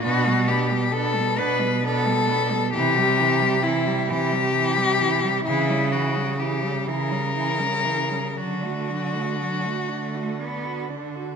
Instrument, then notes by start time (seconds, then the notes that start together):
cello
0.04 B2 B3 D4 F#4
0.26 G3 B3
0.47 B3 D4 G4
0.70 G3 B3
0.92 B3 D4 A4
1.16 G3 B3
1.37 B2 B3 D4 B4
1.60 G3 B3
1.83 B3 D4 A4
2.06 G3 B3
2.30 B3 D4
2.52 G3 B3
2.74 C3 E3 E4 G4
2.97 G3 G4
3.19 E3 E4
3.41 G3 G4
3.63 E3 E4
3.86 G3 G4
4.09 C3 E3 E4 G4
4.32 G3 G4
4.55 E3 E4
4.76 G3 G4
4.99 E3 E4
5.23 G3 G4
5.45 C#3 E3 E4
5.69 G3 C#4
5.92 E3 E4 F#4
6.16 G3 C#4
6.39 E3 E4 G4
6.62 G3 C#4
6.87 C#3 E3 E4 A#4
7.10 G3 C#4
7.35 E3 E4
7.59 G3 C#4
7.85 E3 E4
8.10 G3 C#4
8.36 D3 F#3 D4 F#4
8.62 A3 F#4
8.88 F#3 D4
9.14 A3 F#4
9.39 F#3 D4
9.64 A3 F#4
9.89 D3 A3 D4
10.15 F#4
10.40 B3 D4
10.65 F#4
10.89 D3 D4
11.15 F#4